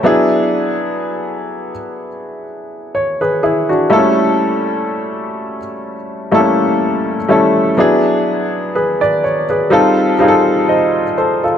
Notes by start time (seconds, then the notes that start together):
Already playing: A4
0.03 F#3 B3 D4 E4 G#4
2.95 C#5
3.21 G#4 B4
3.43 E4 G#4
3.69 D4 F#4
3.90 G3 A3 A#3 E4 A4
3.98 C#4
6.32 G3 A3 A#3 E4 A4
6.39 C#4
7.29 G3 A3 C#4 E4 A4
7.77 F#3 B3 D4 E4 G#4
8.75 G#4 B4
9.01 B4 D5
9.24 C#5
9.50 G#4 B4
9.70 G3 C4 D#4 F4 A4
10.19 G3 C4 D#4 F4 G#4
10.28 A4
10.69 C5 D#5
11.18 A4 C5
11.44 F4 A4